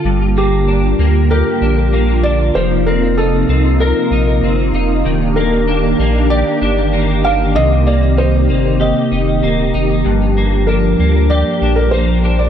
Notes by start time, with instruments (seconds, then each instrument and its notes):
Already playing: clean electric guitar D3 F4 A4
0.05 sub bass G1, clean electric guitar G2, analog synth pad D3 A#3 F4 G4
0.37 clean electric guitar A#3, felt piano G4
0.68 clean electric guitar D4
0.99 sub bass D2, clean electric guitar A#3
1.31 clean electric guitar G4, felt piano A#4
1.61 sub bass A#1, clean electric guitar D4
1.93 clean electric guitar A#3
2.23 clean electric guitar D4, felt piano D5
2.55 sub bass F1, analog synth pad C3 D#4, clean electric guitar F3, felt piano C5
2.86 clean electric guitar C4, felt piano A#4
3.17 clean electric guitar D#4, felt piano A4
3.48 sub bass C2, clean electric guitar C4
3.80 felt piano A#4, clean electric guitar A#4
4.11 sub bass A#1, clean electric guitar D#4
4.42 sub bass G1, clean electric guitar C4
4.73 sub bass F1, clean electric guitar D#4
5.05 sub bass D#1, clean electric guitar D#3, analog synth pad D#3 D4 G4
5.36 clean electric guitar A#3, felt piano A#4
5.68 clean electric guitar D4
5.99 sub bass A#1, clean electric guitar A#3
6.30 clean electric guitar G4, felt piano D5
6.61 sub bass G1, clean electric guitar D4
6.93 clean electric guitar A#3
7.24 clean electric guitar D4, felt piano F5
7.54 sub bass C2, clean electric guitar C3, analog synth pad C4, felt piano D#5
7.87 clean electric guitar A#3, felt piano D5
8.17 clean electric guitar D#4, felt piano C5
8.49 sub bass G1, clean electric guitar A#3
8.80 clean electric guitar G4, felt piano D#5
9.11 sub bass F1, clean electric guitar D#4
9.43 sub bass D#1, clean electric guitar A#3
9.74 sub bass F1, clean electric guitar D#4
10.05 sub bass G1, clean electric guitar G2, analog synth pad F3 A#3 D4
10.37 clean electric guitar A#3
10.67 clean electric guitar D4, felt piano A#4
10.99 sub bass D2, clean electric guitar A#3
11.30 clean electric guitar G4, felt piano D5
11.61 sub bass A#1, clean electric guitar D4
11.76 felt piano A#4
11.91 clean electric guitar A#3, felt piano C5
12.24 clean electric guitar D4
12.39 felt piano D5